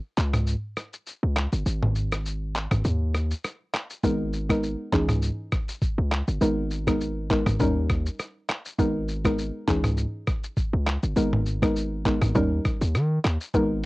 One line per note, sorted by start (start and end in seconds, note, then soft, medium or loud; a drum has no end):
0.17 0.55 C#2 loud
0.17 clap loud
0.17 shaker medium
0.33 cross-stick loud
0.33 mid tom medium
0.33 shaker medium
0.47 shaker medium
0.77 cross-stick loud
0.77 shaker medium
0.93 shaker medium
1.07 shaker medium
1.23 1.47 C#2 medium
1.36 cross-stick loud
1.36 clap medium
1.36 shaker soft
1.52 1.64 G1 loud
1.52 shaker medium
1.66 2.67 G#1 loud
1.66 shaker medium
1.83 mid tom medium
1.95 shaker medium
2.12 cross-stick loud
2.12 shaker medium
2.26 shaker medium
2.55 clap loud
2.55 shaker medium
2.71 2.82 G#1 medium
2.71 cross-stick medium
2.71 mid tom loud
2.71 shaker medium
2.85 3.34 D#2 loud
2.85 shaker medium
3.14 cross-stick loud
3.14 shaker soft
3.31 shaker medium
3.44 cross-stick medium
3.44 shaker medium
3.74 cross-stick loud
3.74 clap loud
3.74 shaker soft
3.90 shaker medium
4.03 4.76 G#1 loud
4.03 4.46 G#3 loud
4.03 4.46 B3 medium
4.03 4.46 D#4 medium
4.03 4.46 A#4 loud
4.03 kick loud
4.03 shaker medium
4.33 shaker medium
4.49 4.68 G#3 medium
4.49 4.68 B3 medium
4.49 4.68 D#4 medium
4.49 4.69 A#4 medium
4.49 kick medium
4.49 cross-stick loud
4.49 shaker medium
4.63 shaker medium
4.92 5.31 C#2 loud
4.92 5.13 E3 medium
4.92 5.13 C#4 medium
4.92 5.14 D#4 medium
4.92 5.14 G#4 medium
4.92 kick loud
4.92 clap loud
4.92 shaker medium
5.09 cross-stick medium
5.09 mid tom loud
5.09 shaker medium
5.22 shaker medium
5.52 kick medium
5.52 cross-stick loud
5.52 shaker medium
5.69 shaker medium
5.82 kick loud
5.82 shaker medium
5.98 6.23 C#2 medium
6.11 cross-stick loud
6.11 clap loud
6.11 shaker soft
6.28 6.39 G1 medium
6.28 shaker medium
6.41 7.43 G#1 loud
6.41 6.83 G#3 medium
6.41 6.83 B3 medium
6.41 6.83 D#4 medium
6.41 6.83 A#4 loud
6.41 shaker medium
6.71 shaker medium
6.87 7.06 G#3 medium
6.87 7.06 B3 medium
6.87 7.06 D#4 medium
6.87 7.06 A#4 medium
6.87 kick medium
6.87 cross-stick loud
6.87 shaker medium
7.01 shaker medium
7.30 7.51 G#3 medium
7.30 7.51 B3 medium
7.30 7.51 D#4 medium
7.30 7.51 A#4 medium
7.30 kick loud
7.30 clap loud
7.30 shaker medium
7.46 7.58 G#1 medium
7.46 cross-stick medium
7.46 mid tom loud
7.46 shaker medium
7.60 8.09 D#2 loud
7.60 8.70 G3 loud
7.60 8.70 C#4 medium
7.60 8.70 D#4 medium
7.60 8.70 A#4 loud
7.60 kick medium
7.60 shaker medium
7.90 kick medium
7.90 cross-stick loud
7.90 shaker medium
8.06 shaker medium
8.19 cross-stick medium
8.19 shaker medium
8.49 cross-stick loud
8.49 clap medium
8.49 shaker soft
8.65 shaker medium
8.78 9.51 G#1 loud
8.78 9.21 G#3 medium
8.78 9.21 B3 medium
8.78 9.21 D#4 medium
8.78 9.21 A#4 loud
8.78 kick loud
8.78 shaker medium
9.08 shaker medium
9.25 9.43 G#3 medium
9.25 9.44 B3 medium
9.25 9.44 D#4 medium
9.25 9.44 A#4 medium
9.25 kick medium
9.25 cross-stick loud
9.25 shaker medium
9.38 shaker medium
9.68 10.06 C#2 medium
9.68 9.89 E3 medium
9.68 9.89 C#4 medium
9.68 9.89 D#4 medium
9.68 9.89 G#4 medium
9.68 kick loud
9.68 clap loud
9.68 shaker medium
9.84 cross-stick medium
9.84 mid tom medium
9.84 shaker medium
9.97 shaker medium
10.27 kick medium
10.27 cross-stick loud
10.27 shaker soft
10.44 shaker medium
10.57 kick loud
10.57 shaker medium
10.73 10.98 C#2 medium
10.87 cross-stick loud
10.87 clap loud
10.87 shaker soft
11.03 11.14 G1 medium
11.03 shaker medium
11.16 12.18 G#1 loud
11.16 11.58 G#3 medium
11.16 11.59 B3 medium
11.16 11.59 D#4 medium
11.16 11.59 A#4 loud
11.16 shaker medium
11.33 mid tom medium
11.46 shaker medium
11.62 11.81 G#3 medium
11.62 11.81 B3 medium
11.62 11.81 D#4 medium
11.62 11.81 A#4 medium
11.62 kick medium
11.62 cross-stick loud
11.62 shaker medium
11.76 shaker medium
12.05 12.26 G#3 medium
12.05 12.26 B3 medium
12.05 12.26 D#4 medium
12.05 12.26 A#4 medium
12.05 kick loud
12.05 clap loud
12.05 shaker medium
12.22 12.33 G#1 medium
12.22 cross-stick loud
12.22 mid tom loud
12.22 shaker medium
12.35 12.60 D#2 loud
12.35 13.45 G3 loud
12.35 13.45 C#4 medium
12.35 13.46 D#4 medium
12.35 13.46 A#4 loud
12.35 kick medium
12.35 shaker medium
12.65 kick medium
12.65 cross-stick loud
12.65 shaker medium
12.81 12.96 D#2 medium
12.81 shaker medium
12.95 13.19 D#3 loud
12.95 cross-stick medium
12.95 shaker medium
13.24 13.38 D#2 medium
13.24 cross-stick loud
13.24 clap loud
13.24 shaker soft
13.41 shaker medium
13.54 13.86 G#1 loud
13.54 13.86 G#3 loud
13.54 13.86 B3 medium
13.54 13.86 D#4 medium
13.54 13.86 A#4 loud
13.54 kick loud
13.54 shaker medium